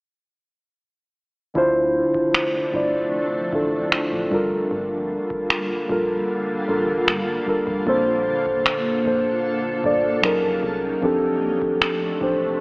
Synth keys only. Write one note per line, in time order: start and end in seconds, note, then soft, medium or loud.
1.54 2.26 D3 loud
1.54 2.27 D4 medium
1.54 2.27 E4 medium
1.54 2.28 F4 medium
1.54 2.28 C5 loud
2.72 3.21 D3 medium
2.72 3.21 D4 medium
2.72 3.22 E4 medium
2.72 3.22 F4 medium
2.72 3.23 D5 medium
3.51 4.24 D3 medium
3.51 4.24 D4 medium
3.51 4.25 E4 medium
3.51 4.25 F4 medium
3.51 4.25 A4 medium
4.30 5.57 G3 medium
4.30 5.58 D4 medium
4.30 5.58 F4 medium
4.30 5.59 A4 medium
4.30 5.59 A#4 loud
5.88 6.37 G3 medium
5.88 6.37 D4 medium
5.88 6.38 F4 medium
5.88 6.38 A4 medium
5.88 6.38 A#4 medium
6.67 7.16 G3 medium
6.67 7.16 D4 medium
6.67 7.16 F4 medium
6.67 7.17 A4 medium
6.67 7.17 A#4 medium
7.46 7.71 G3 medium
7.46 7.71 D4 medium
7.46 7.71 F4 medium
7.46 7.72 A4 medium
7.46 7.72 A#4 medium
7.85 8.58 A#2 loud
7.85 8.58 A#3 medium
7.85 7.93 C4 medium
7.85 8.59 A4 medium
7.85 8.60 C5 loud
7.94 8.62 D4 medium
9.04 9.52 A#2 medium
9.04 9.53 A#3 medium
9.04 9.53 D4 medium
9.04 9.54 A4 medium
9.04 9.54 C5 medium
9.82 10.23 A#2 medium
9.82 10.23 A#3 medium
9.82 10.24 D4 medium
9.82 10.24 A4 medium
9.82 10.25 D5 medium
10.22 10.86 F#3 medium
10.22 10.86 C#4 medium
10.22 10.87 D#4 medium
10.22 10.87 G#4 medium
10.22 10.88 A#4 loud
11.01 11.74 F3 loud
11.01 11.74 C4 medium
11.01 11.74 D4 loud
11.01 11.75 G4 medium
11.01 11.75 A4 loud
12.19 12.61 F3 medium
12.19 12.61 C4 medium
12.19 12.61 D4 medium
12.19 12.61 G4 medium
12.19 12.61 C5 medium